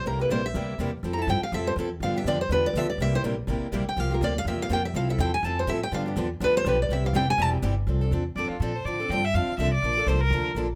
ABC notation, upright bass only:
X:1
M:4/4
L:1/8
Q:"Swing" 1/4=246
K:F
V:1 name="Upright bass" clef=bass
C,,2 B,,,2 D,,2 E,,2 | F,,2 G,, z F,,2 E,,2 | G,,2 F,,2 E,,2 D,,2 | C,,2 B,,,2 A,,, z B,,, z |
C,,2 D,,2 E,,2 F,,2 | C,,2 E,,2 F,,2 A,,2 | G,,2 E,,2 D,,2 =B,,,2 | C,,2 F,,,2 E,,,2 G,,,2 |
C,,2 E,,2 F,, z B,,2 | A,,2 G,,2 F,, z C,,2 | B,,,2 C,,2 D,,2 B,,,2 |]